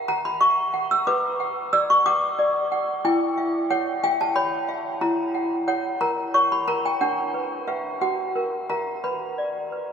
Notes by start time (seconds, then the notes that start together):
0.08 F#5 A#5
0.25 B5
0.40 E5 C#6
0.74 F#5
0.91 E6
1.07 B4 D6
1.40 F#5
1.73 D5 E6
1.90 C#6
2.06 F#5 D6
2.39 D5
2.72 F#5
3.05 E4 G5
3.37 E5
3.70 C#5 F#5
4.04 E5 G5
4.21 A5
4.36 C#5 B5
4.69 E5
5.01 E4 A#5
5.34 F#5
5.68 C#5 F#5
6.01 A#4 A#5
6.34 C#5 C#6
6.52 B5
6.68 A#4 A#5
6.85 G5
7.01 D4 F#5
7.34 B4
7.67 B4 E5 F#5
8.01 F#4 F#5
8.36 A#4
8.70 A#4 E5 A#5
9.04 B4 B5
9.38 D5
9.72 B4